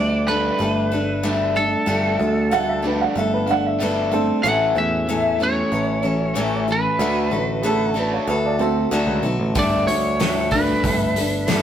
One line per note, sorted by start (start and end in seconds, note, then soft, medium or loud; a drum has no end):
0.00 0.50 D2 medium
0.00 0.27 G3 medium
0.00 0.27 A3 medium
0.00 0.28 D4 medium
0.00 0.26 A4 medium
0.00 0.29 D5 medium
0.27 0.58 G3 medium
0.27 0.59 A3 soft
0.27 0.59 D4 soft
0.27 0.60 A4 medium
0.27 1.56 B4 medium
0.59 1.75 G1 medium
0.59 0.91 G3 soft
0.59 0.92 A3 soft
0.59 0.92 D4 medium
0.59 0.90 A4 medium
0.92 1.21 G3 medium
0.92 1.22 A3 soft
0.92 1.24 D4 soft
0.92 1.24 A4 medium
1.23 1.56 G3 medium
1.23 1.56 A3 medium
1.23 1.56 D4 medium
1.23 1.54 A4 medium
1.55 1.84 G3 medium
1.55 1.86 A3 soft
1.55 1.86 D4 soft
1.55 1.87 A4 soft
1.55 3.44 A4 medium
1.86 2.16 G1 medium
1.86 2.19 G3 medium
1.86 2.20 A3 medium
1.86 2.20 D4 medium
1.86 2.18 A4 medium
2.19 3.06 D2 medium
2.19 2.48 G3 medium
2.19 2.51 A3 soft
2.19 2.52 D4 soft
2.19 2.52 A4 soft
2.49 2.84 G3 medium
2.49 2.84 A3 medium
2.49 2.52 F5 medium
2.53 2.83 D4 medium
2.53 2.81 A4 medium
2.53 2.67 F#5 medium
2.69 2.84 E5 medium
2.82 3.14 G3 medium
2.82 3.16 A3 soft
2.82 3.16 D4 soft
2.82 3.15 A4 medium
2.87 3.00 B4 medium
3.01 3.16 F#5 medium
3.15 4.31 G1 medium
3.15 3.48 G3 medium
3.15 3.49 A3 medium
3.15 3.48 D4 medium
3.15 3.46 A4 medium
3.15 3.32 E5 medium
3.34 3.48 B4 medium
3.46 3.76 G3 medium
3.46 3.81 D4 medium
3.46 3.80 A4 medium
3.46 3.49 F5 medium
3.50 3.80 A3 soft
3.50 3.64 F#5 medium
3.66 3.80 E5 medium
3.80 4.12 G3 medium
3.80 4.13 A3 medium
3.80 4.12 D4 medium
3.80 4.10 A4 medium
3.80 4.13 B4 medium
4.12 4.41 G3 medium
4.12 4.45 A3 soft
4.12 4.42 C4 medium
4.12 4.45 D4 soft
4.12 4.44 A4 medium
4.43 4.73 A1 medium
4.43 4.76 A2 medium
4.43 4.77 E3 medium
4.43 4.77 F#3 medium
4.43 4.76 A3 medium
4.43 4.75 C#4 medium
4.43 4.74 A4 medium
4.43 4.77 F#5 medium
4.75 5.62 E2 medium
4.75 5.05 A2 medium
4.75 5.05 E3 medium
4.75 5.08 F#3 soft
4.75 5.08 A3 soft
4.75 5.08 C#4 soft
4.75 5.08 A4 soft
4.75 5.37 E5 medium
5.09 5.40 A2 medium
5.09 5.40 E3 medium
5.09 5.41 F#3 medium
5.09 5.40 A3 medium
5.09 5.40 C#4 medium
5.09 5.39 A4 medium
5.39 5.70 A2 medium
5.39 5.70 E3 medium
5.39 5.71 A3 soft
5.39 5.72 C#4 soft
5.39 5.72 A4 medium
5.43 5.71 F#3 soft
5.43 6.66 C#5 medium
5.72 6.87 A1 medium
5.72 6.01 A2 medium
5.72 6.01 E3 medium
5.72 6.04 F#3 soft
5.72 6.03 A3 medium
5.72 6.02 C#4 medium
5.72 6.02 A4 medium
6.02 6.32 A2 medium
6.02 6.32 E3 medium
6.02 6.35 F#3 soft
6.02 6.35 A3 soft
6.02 6.35 C#4 soft
6.02 6.35 A4 soft
6.35 6.68 A2 medium
6.35 6.68 E3 medium
6.35 6.68 F#3 medium
6.35 6.68 A3 medium
6.35 6.67 C#4 medium
6.35 6.67 A4 medium
6.67 6.97 A2 medium
6.67 6.97 E3 medium
6.67 6.99 F#3 soft
6.67 6.99 A3 soft
6.67 7.00 C#4 soft
6.67 7.00 A4 soft
6.72 7.94 B4 medium
6.99 7.28 D2 medium
6.99 7.32 D3 medium
6.99 7.32 F#3 medium
6.99 7.32 A3 medium
6.99 7.30 D4 medium
6.99 7.31 F#4 medium
6.99 7.30 A4 medium
7.31 8.18 A1 medium
7.31 7.60 D3 medium
7.31 7.63 A3 soft
7.31 7.63 F#4 soft
7.31 7.64 A4 soft
7.62 7.96 D3 medium
7.62 7.96 F#3 medium
7.62 7.95 A3 medium
7.62 7.95 F#4 medium
7.62 7.65 G#4 medium
7.62 7.93 A4 medium
7.67 7.97 A4 medium
7.94 8.26 D3 medium
7.94 8.26 A3 soft
7.94 8.26 D4 medium
7.94 8.28 F#4 soft
7.94 8.27 A4 medium
7.94 8.58 A4 medium
7.99 8.13 B4 medium
8.14 8.28 C#5 medium
8.27 8.85 D2 medium
8.27 8.57 D3 medium
8.27 8.60 F#3 medium
8.27 8.60 A3 medium
8.27 8.60 F#4 medium
8.27 8.58 A4 medium
8.27 8.44 B4 medium
8.46 8.60 D5 medium
8.59 8.89 D3 medium
8.59 8.91 A3 soft
8.59 8.90 C4 medium
8.59 8.92 F#4 medium
8.59 8.92 A4 medium
8.59 8.91 A4 medium
8.91 9.06 D2 medium
8.91 9.24 D3 medium
8.91 9.24 F#3 medium
8.91 9.24 A3 medium
8.91 9.23 D4 medium
8.91 9.24 F#4 medium
8.91 9.22 A4 medium
9.07 9.22 C#2 medium
9.23 9.38 B1 medium
9.23 9.53 D3 medium
9.23 9.54 A3 soft
9.23 9.56 F#4 medium
9.23 9.55 A4 medium
9.39 9.54 A1 medium
9.55 9.84 G1 medium
9.55 9.87 G3 medium
9.55 9.88 A3 medium
9.55 9.88 D4 medium
9.55 9.87 A4 medium
9.55 9.87 D5 medium
9.55 kick loud
9.55 open hi-hat medium
9.87 10.73 D2 medium
9.87 10.17 G3 medium
9.87 10.20 A3 soft
9.87 10.20 D4 soft
9.87 10.20 A4 soft
9.87 10.51 C#5 medium
9.87 open hi-hat soft
10.20 10.52 G3 medium
10.20 10.52 A3 medium
10.20 10.53 D4 medium
10.20 10.51 A4 medium
10.20 snare loud
10.20 open hi-hat medium
10.51 10.82 G3 medium
10.51 10.85 D4 soft
10.51 10.84 A4 soft
10.51 11.62 B4 medium
10.51 kick medium
10.51 open hi-hat soft
10.56 10.85 A3 soft
10.84 11.62 G1 medium
10.84 11.16 G3 medium
10.84 11.17 A3 medium
10.84 11.17 D4 soft
10.84 11.16 A4 medium
10.84 kick medium
10.84 open hi-hat medium
11.16 11.45 G3 medium
11.16 11.49 D4 soft
11.16 11.48 A4 soft
11.16 open hi-hat soft
11.20 11.49 A3 soft
11.48 11.62 G3 medium
11.48 11.62 A3 medium
11.48 11.62 D4 medium
11.48 11.62 A4 medium
11.48 snare loud
11.48 open hi-hat medium